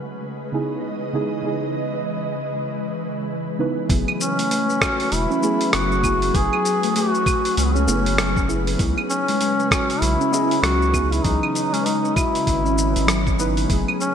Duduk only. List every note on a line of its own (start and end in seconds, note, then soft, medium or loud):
4.21 5.15 C#4 loud
5.14 5.75 E4 loud
5.74 6.37 F#4 loud
6.35 6.96 G#4 loud
6.96 7.53 F#4 loud
7.57 7.67 C#4 medium
7.65 7.76 B3 medium
7.74 8.49 C#4 medium
9.10 10.02 C#4 loud
10.01 10.61 E4 loud
10.62 11.08 F#4 loud
11.08 11.25 E4 medium
11.08 11.13 F#4 medium
11.24 11.75 D#4 loud
11.73 11.87 C#4 medium
11.85 12.18 D#4 loud
12.16 13.39 E4 loud
14.01 14.14 C#4 medium